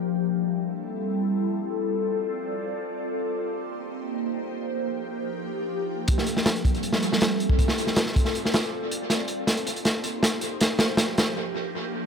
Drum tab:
HH |----------------|----------------|----------------|----------------|
SD |----------------|----------------|----------------|----------------|
BD |----------------|----------------|----------------|----------------|

HH |x-x-xxxxx-x-x-x-|x-x-x-x-x-xx--x-|x-x-xxxxx-x-x-x-|x-x-x-x---------|
SD |-o-oo----o-oo---|-o-ooo-o-oo-----|o---o---o---o---|o-o-o-o---------|
BD |o-----o--------o|o-----o---------|----------------|----------------|